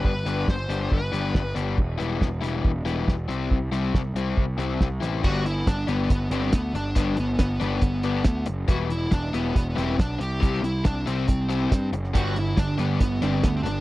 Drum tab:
CC |----------------|----------------|----------------|x---------------|
HH |--x---x---x---x-|--x---x---x---x-|--x---x---x---x-|--x-x-x-x-x-x-x-|
SD |----o-------o---|----o-------o---|----o-------o-o-|----o-------o---|
BD |o---o---o---o---|o---o---o---o---|o---o---o---o---|o---o---o---o---|

CC |----------------|----------------|----------------|----------------|
HH |x-x-x-x-x-x-x-x-|x-x-x-x-x-x-x-x-|x-x-x-x-x-x-x-x-|x-x-x-x-x-x-x-x-|
SD |----o-------o---|----o-------o---|----o-------o--o|----o-------o---|
BD |o---o---o---o---|o---o---o---o---|o---o---o---o---|o---o---o---o---|